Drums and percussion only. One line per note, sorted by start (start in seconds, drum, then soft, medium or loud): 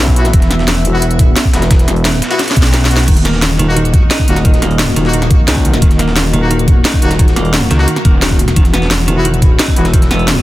0.08 kick medium
0.08 snare medium
0.16 closed hi-hat medium
0.25 snare soft
0.25 closed hi-hat soft
0.33 kick loud
0.33 closed hi-hat medium
0.33 closed hi-hat loud
0.42 snare soft
0.42 closed hi-hat soft
0.51 snare soft
0.51 closed hi-hat medium
0.59 snare medium
0.68 snare loud
0.68 closed hi-hat loud
0.68 closed hi-hat medium
0.76 snare soft
0.85 closed hi-hat medium
1.02 closed hi-hat loud
1.02 closed hi-hat medium
1.11 closed hi-hat soft
1.19 kick loud
1.19 closed hi-hat medium
1.36 snare loud
1.36 closed hi-hat loud
1.36 closed hi-hat medium
1.45 kick medium
1.45 snare soft
1.54 snare loud
1.54 closed hi-hat medium
1.62 snare medium
1.62 snare soft
1.62 closed hi-hat soft
1.71 kick loud
1.71 snare loud
1.71 closed hi-hat loud
1.71 closed hi-hat medium
1.79 snare soft
1.79 closed hi-hat soft
1.88 snare soft
1.88 closed hi-hat medium
1.96 closed hi-hat soft
2.05 snare loud
2.05 closed hi-hat medium
2.05 closed hi-hat loud
2.13 snare soft
2.22 snare loud
2.22 closed hi-hat medium
2.31 snare loud
2.31 closed hi-hat medium
2.39 snare loud
2.39 snare medium
2.39 closed hi-hat medium
2.39 closed hi-hat loud
2.48 snare loud
2.48 closed hi-hat medium
2.48 closed hi-hat soft
2.51 snare medium
2.56 kick loud
2.56 closed hi-hat medium
2.62 snare medium
2.74 snare loud
2.74 snare medium
2.74 closed hi-hat medium
2.74 closed hi-hat loud
2.82 snare medium
2.85 snare loud
2.91 closed hi-hat medium
2.96 snare loud
2.99 snare soft
2.99 closed hi-hat soft
3.08 kick loud
3.08 closed hi-hat medium
3.08 closed hi-hat loud
3.08 crash medium
3.16 snare soft
3.16 closed hi-hat soft
3.25 snare medium
3.25 closed hi-hat medium
3.34 snare medium
3.42 snare loud
3.42 closed hi-hat medium
3.42 closed hi-hat loud
3.51 snare soft
3.59 closed hi-hat medium
3.76 closed hi-hat medium
3.76 closed hi-hat loud
3.85 closed hi-hat soft
3.94 kick loud
3.94 closed hi-hat medium
4.11 snare loud
4.11 closed hi-hat loud
4.11 closed hi-hat medium
4.19 kick medium
4.19 snare soft
4.28 closed hi-hat medium
4.36 snare medium
4.36 snare soft
4.36 closed hi-hat soft
4.45 kick loud
4.45 closed hi-hat medium
4.54 snare soft
4.54 closed hi-hat soft
4.62 snare medium
4.62 closed hi-hat medium
4.71 closed hi-hat soft
4.79 snare loud
4.79 closed hi-hat loud
4.79 closed hi-hat medium
4.88 snare soft
4.96 snare medium
4.96 closed hi-hat medium
5.05 snare medium
5.13 closed hi-hat loud
5.13 closed hi-hat medium
5.22 snare medium
5.22 closed hi-hat soft
5.31 kick loud
5.31 closed hi-hat medium
5.48 snare loud
5.48 closed hi-hat medium
5.48 closed hi-hat loud
5.56 kick medium
5.56 snare medium
5.65 closed hi-hat medium
5.73 snare soft
5.73 closed hi-hat soft
5.82 kick loud
5.82 closed hi-hat medium
5.91 snare soft
5.91 closed hi-hat soft
5.99 snare medium
5.99 closed hi-hat medium
6.08 snare medium
6.16 snare loud
6.16 closed hi-hat medium
6.25 snare soft
6.33 closed hi-hat medium
6.51 closed hi-hat medium
6.59 closed hi-hat soft
6.68 kick loud
6.68 closed hi-hat medium
6.85 snare loud
6.85 closed hi-hat medium
6.93 kick medium
6.93 snare soft
7.02 closed hi-hat medium
7.11 snare medium
7.11 snare soft
7.11 closed hi-hat soft
7.19 kick loud
7.19 closed hi-hat medium
7.28 snare soft
7.28 closed hi-hat soft
7.36 snare soft
7.36 closed hi-hat medium
7.45 closed hi-hat soft
7.53 snare loud
7.53 closed hi-hat medium
7.62 snare soft
7.71 snare medium
7.71 closed hi-hat medium
7.79 snare medium
7.88 closed hi-hat medium
7.96 snare soft
7.96 closed hi-hat soft
8.05 kick loud
8.05 closed hi-hat medium
8.22 snare loud
8.22 closed hi-hat medium
8.31 kick medium
8.31 snare medium
8.39 closed hi-hat medium
8.48 snare soft
8.48 closed hi-hat soft
8.56 kick loud
8.56 closed hi-hat medium
8.65 snare soft
8.65 closed hi-hat soft
8.74 snare soft
8.74 closed hi-hat medium
8.82 snare medium
8.91 snare loud
8.91 closed hi-hat medium
8.99 snare soft
9.08 closed hi-hat medium
9.25 closed hi-hat medium
9.34 closed hi-hat soft
9.42 kick loud
9.42 closed hi-hat medium
9.59 snare loud
9.59 closed hi-hat medium
9.68 kick medium
9.68 snare soft
9.76 closed hi-hat medium
9.85 snare medium
9.85 snare soft
9.85 closed hi-hat soft
9.94 kick loud
9.94 closed hi-hat medium
10.02 snare soft
10.02 closed hi-hat soft
10.11 snare soft
10.11 closed hi-hat medium
10.19 closed hi-hat soft
10.28 snare loud
10.28 closed hi-hat loud
10.28 closed hi-hat medium
10.36 snare soft